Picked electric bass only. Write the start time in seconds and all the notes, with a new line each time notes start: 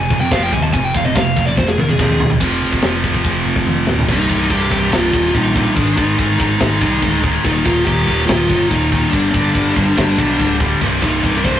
0.10 F2
0.31 F1
0.53 D#2
0.73 F1
0.95 F1
1.16 F1
1.57 F1
1.79 F1
2.00 D#2
2.41 F1
2.63 F1
2.84 F1
3.04 F1
3.24 F1
3.45 F1
3.66 F1
3.87 D1
4.08 C1
4.30 C1
4.50 C1
4.71 C1
4.92 C1
5.13 D#1
5.34 A#1
5.77 G#1
5.97 G#1
6.19 G#1
6.40 G#1
6.61 G#1
6.82 C2
7.03 D1
7.45 D#1
7.65 D#1
7.87 D#1
8.08 D#1
8.29 D#1
8.49 G1
8.71 D#1
9.13 G1
9.34 G1
9.55 G1
9.76 G1
9.98 G1
10.18 B1
10.40 D1
10.82 C1
11.02 C1
11.24 C1
11.44 C1